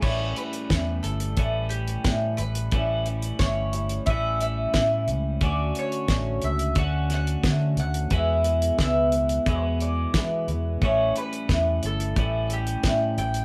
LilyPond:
<<
  \new Staff \with { instrumentName = "Mandolin" } { \time 4/4 \key a \mixolydian \tempo 4 = 89 cis''8 b'4 a'4 g'4 b'8~ | b'4 cis''4 e''8 e''4 r8 | d''8 cis''4 e''8 fis''8 fis''4 fis''8 | e''4 e''4 b'8 d''4. |
cis''8 b'4 a'4 g'4 g''8 | }
  \new Staff \with { instrumentName = "Twelve-string acoustic guitar" } { \time 4/4 \key a \mixolydian <a, e g cis' e'>8 <g cis' e'>8 <a, e g cis' e'>8 <g cis' e'>8 <e g cis' e'>4 <a, e g cis' e'>8 <g cis' e'>8 | <a, e g cis' e'>8 <g cis' e'>8 <a, e g cis' e'>8 <g cis' e'>8 <e g cis' e'>4 <a, e g cis' e'>8 <g cis' e'>8 | <d a fis'>8 <a cis' fis'>8 <d a cis' fis'>8 <a cis' fis'>8 <d a cis' fis'>4 <d a cis' fis'>8 <a cis' fis'>8 | <e, b, e gis b e'>8 <e gis b e'>8 <e, b, e gis b e'>8 <e gis b e'>8 <e gis b e'>4 <e, b, e gis b e'>8 <e gis b e'>8 |
<a, e g cis' e'>8 <g cis' e'>8 <a, e g cis' e'>8 <g cis' e'>8 <e g cis' e'>4 <a, e g cis' e'>8 <g cis' e'>8 | }
  \new Staff \with { instrumentName = "Clean electric guitar" } { \clef bass \time 4/4 \key a \mixolydian <a, e g cis' e'>2 <a, e g cis' e'>2 | <a, e g cis' e'>2 <a, e g cis' e'>2 | <d a cis' fis'>2 <d a cis' fis'>2 | <e, b, e gis b e'>2 <e, b, e gis b e'>2 |
<a, e g cis' e'>2 <a, e g cis' e'>2 | }
  \new Staff \with { instrumentName = "Fingered electric bass" } { \clef bass \time 4/4 \key a \mixolydian a,,8 r8 e,8 g,,8 a,,4 a,8 a,,8 | a,,4 g,,4 a,,4 a,8 cis,8 | d,8 r8 a,,8 cis,8 d,4 d8 d,8 | e,4 cis,4 e,4 e8 e,8 |
a,,8 r8 e,8 g,,8 a,,4 a,8 a,,8 | }
  \new DrumStaff \with { instrumentName = "Drums" } \drummode { \time 4/4 <cymc bd>8 hh16 hh16 <hh bd sn>8 hh16 hh16 <hh bd>8 hh16 hh16 <hh bd sn>8 hh16 hh16 | <hh bd>8 hh16 hh16 <hh bd sn>8 hh16 hh16 <hh bd>8 hh8 <hh bd sn>8 hh8 | <hh bd>8 hh16 hh16 <hh bd sn>8 hh16 hh16 <hh bd>8 <hh sn>16 hh16 <hh bd sn>8 hh16 hh16 | <hh bd>8 hh16 hh16 <hh bd sn>8 hh16 hh16 <hh bd>8 hh8 <hh bd sn>8 hh8 |
<hh bd>8 hh16 hh16 <hh bd sn>8 hh16 hh16 <hh bd>8 hh16 hh16 <hh bd sn>8 hh16 hh16 | }
>>